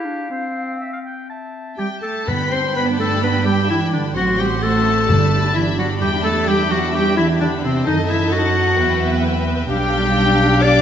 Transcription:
0.00 0.30 G4 soft
0.00 1.00 F5 soft
0.05 0.29 D4 soft
0.30 1.75 C4 medium
0.30 0.74 C5 soft
0.80 0.91 E5 soft
0.93 0.98 F5 soft
1.05 1.29 G5 soft
1.30 1.99 E5 soft
1.30 1.80 A5 soft
1.78 1.86 G3 soft
1.78 1.89 G4 soft
1.78 2.01 G5 soft
1.78 2.28 G5 soft
2.02 2.27 A3 medium
2.02 2.29 A4 medium
2.02 2.27 A5 medium
2.27 4.12 G2 medium
2.27 2.95 G2 medium
2.27 4.12 G3 medium
2.27 2.51 B3 medium
2.27 4.12 D4 medium
2.27 2.53 B4 medium
2.27 4.12 G5 medium
2.27 4.12 B5 medium
2.27 2.52 B5 medium
2.51 2.59 C4 medium
2.51 2.75 C5 medium
2.51 2.75 C6 medium
2.74 2.98 B3 medium
2.74 2.86 B4 medium
2.74 2.83 B5 medium
2.98 3.22 A3 medium
2.98 3.22 A4 medium
2.98 3.22 A5 medium
3.22 3.45 B3 medium
3.22 3.45 B4 medium
3.22 3.45 B5 medium
3.45 3.69 G3 medium
3.45 3.69 G4 medium
3.45 3.69 G5 medium
3.69 3.93 E3 medium
3.69 3.80 E4 medium
3.69 3.92 E5 medium
3.92 4.16 D3 medium
3.92 4.03 D4 medium
3.92 4.15 D5 soft
4.15 5.07 A1 medium
4.15 4.39 F#3 medium
4.15 5.05 C4 medium
4.15 5.05 F#4 medium
4.15 4.41 F#4 medium
4.15 4.23 F#5 medium
4.15 5.05 F#5 medium
4.15 5.05 C6 soft
4.38 4.47 G3 medium
4.38 4.64 G4 medium
4.38 4.46 G5 medium
4.62 5.53 A3 medium
4.62 5.54 A4 medium
4.62 5.53 A5 medium
5.09 6.01 G1 medium
5.09 5.74 G2 medium
5.09 7.83 D4 medium
5.09 7.83 G4 medium
5.09 5.98 D5 soft
5.09 7.84 B5 medium
5.55 5.63 E3 medium
5.55 5.65 E4 medium
5.55 5.78 E5 medium
5.78 5.86 F#3 medium
5.78 5.89 F#4 medium
5.78 5.87 F#5 medium
6.01 7.87 E2 medium
6.01 6.24 G3 medium
6.01 6.12 G4 medium
6.01 7.83 E5 medium
6.01 6.25 G5 medium
6.24 6.48 A3 medium
6.24 6.50 A4 medium
6.24 6.48 A5 medium
6.47 6.71 G3 medium
6.47 6.73 G4 medium
6.47 6.72 G5 medium
6.70 6.78 F#3 medium
6.70 6.94 F#4 medium
6.70 6.95 F#5 medium
6.94 7.17 G3 medium
6.94 7.16 G4 medium
6.94 7.18 G5 medium
7.17 7.40 E3 medium
7.17 7.28 E4 medium
7.17 7.26 E5 medium
7.40 7.64 D3 medium
7.40 7.51 D4 medium
7.40 7.50 D5 medium
7.63 7.87 C3 medium
7.63 7.86 C4 medium
7.63 7.87 C5 medium
7.86 8.78 F#2 medium
7.86 7.95 D#3 medium
7.86 7.97 D#4 medium
7.86 8.75 D#4 medium
7.86 8.75 A4 medium
7.86 8.75 D#5 medium
7.86 8.10 D#5 medium
7.86 8.75 A5 medium
8.09 8.18 E3 medium
8.09 8.34 E4 medium
8.09 8.32 E5 medium
8.32 9.23 F#3 medium
8.32 9.24 F#4 medium
8.32 9.25 F#5 medium
8.79 9.71 E2 medium
8.79 9.66 B3 medium
8.79 9.66 B4 medium
8.79 9.67 E5 medium
8.79 10.82 G5 medium
9.70 10.82 B1 medium
9.70 10.59 G3 medium
9.70 10.82 D4 medium
9.70 10.65 G4 loud
9.70 10.82 G4 medium
9.70 10.82 F5 medium
9.70 10.59 G5 medium
10.62 10.82 D4 medium
10.62 10.82 D5 loud
10.62 10.82 D6 loud

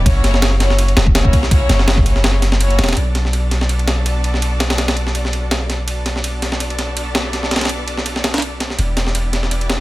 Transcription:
0.06 0.95 F#1 loud
0.06 0.58 A#3 loud
0.06 0.58 C#4 medium
0.06 0.58 E4 medium
0.06 0.58 F#4 medium
0.06 0.58 C#5 loud
0.06 kick loud
0.06 ride medium
0.24 snare medium
0.24 ride medium
0.34 snare soft
0.42 snare loud
0.42 ride medium
0.60 1.04 A#3 medium
0.60 1.04 C#4 medium
0.60 1.04 E4 medium
0.60 1.04 F#4 medium
0.60 1.04 C#5 medium
0.60 snare soft
0.60 ride medium
0.70 snare medium
0.79 ride medium
0.88 ride soft
0.97 1.32 E1 loud
0.97 snare loud
0.97 ride medium
1.07 kick loud
1.15 1.49 A#3 loud
1.15 1.49 C#4 medium
1.15 1.49 E4 medium
1.15 1.49 F#4 medium
1.15 1.49 C#5 loud
1.15 snare loud
1.15 ride medium
1.25 kick medium
1.33 kick loud
1.33 ride medium
1.43 snare soft
1.51 2.04 A#3 loud
1.51 2.04 C#4 medium
1.51 2.04 E4 medium
1.51 2.04 F#4 medium
1.51 2.04 C#5 loud
1.51 kick loud
1.51 ride medium
1.69 2.78 F#1 medium
1.69 snare medium
1.69 ride medium
1.79 snare medium
1.88 snare loud
1.88 ride medium
1.97 kick medium
2.06 2.50 A#3 medium
2.06 2.50 C#4 medium
2.06 2.50 E4 medium
2.06 2.50 F#4 medium
2.06 2.50 C#5 medium
2.06 ride medium
2.16 snare soft
2.24 snare loud
2.24 ride medium
2.42 snare soft
2.42 ride medium
2.52 snare soft
2.60 2.95 A#3 loud
2.60 2.95 C#4 medium
2.60 2.95 E4 medium
2.60 2.95 F#4 medium
2.60 2.95 C#5 loud
2.60 ride medium
2.70 ride soft
2.78 2.95 E1 loud
2.78 snare medium
2.78 ride medium
2.84 snare medium
2.84 ride medium
2.89 snare medium
2.89 ride medium
2.93 5.86 A4 medium
2.93 5.86 D5 medium
2.93 snare medium
2.93 ride medium
2.97 8.77 B1 medium
2.97 5.86 B3 medium
2.97 5.86 D4 medium
2.97 5.86 F#4 medium
2.97 ride medium
3.15 snare medium
3.15 ride medium
3.25 snare soft
3.33 ride medium
3.51 snare soft
3.51 ride medium
3.61 snare soft
3.69 ride medium
3.79 ride soft
3.88 snare medium
3.88 ride medium
4.06 ride medium
4.24 ride medium
4.34 snare soft
4.42 ride medium
4.60 snare loud
4.60 ride medium
4.70 snare medium
4.70 ride medium
4.78 snare medium
4.78 ride medium
4.88 snare medium
4.88 ride medium
4.97 ride medium
5.07 snare soft
5.15 ride medium
5.25 snare soft
5.33 ride medium
5.51 snare loud
5.51 ride medium
5.70 snare soft
5.70 ride medium
5.87 8.77 B3 medium
5.87 8.77 D4 medium
5.87 8.77 F#4 medium
5.87 8.76 A4 medium
5.87 8.76 D5 medium
5.87 ride medium
6.06 snare medium
6.06 ride medium
6.16 snare soft
6.24 ride medium
6.42 snare soft
6.42 ride medium
6.52 snare soft
6.60 ride medium
6.70 ride soft
6.79 snare soft
6.79 ride medium
6.97 ride medium
7.15 snare loud
7.15 ride medium
7.33 snare soft
7.33 ride medium
7.43 snare soft
7.51 snare medium
7.51 ride medium
7.56 snare medium
7.56 ride medium
7.61 snare medium
7.61 ride medium
7.65 snare medium
7.65 ride medium
7.69 ride medium
7.88 ride medium
7.98 snare soft
8.06 ride medium
8.16 snare soft
8.24 snare loud
8.24 ride medium
8.34 snare medium
8.34 ride medium
8.38 snare medium
8.38 ride medium
8.42 ride medium
8.60 snare soft
8.60 ride medium
8.70 snare soft
8.79 9.80 E1 medium
8.79 9.80 B3 medium
8.79 9.80 D4 medium
8.79 9.80 E4 medium
8.79 9.80 G4 medium
8.79 9.80 D5 medium
8.79 ride medium
8.97 snare medium
8.97 ride medium
9.07 snare soft
9.15 ride medium
9.33 snare soft
9.33 ride medium
9.43 snare soft
9.51 ride medium
9.61 ride soft
9.70 snare loud
9.70 ride medium

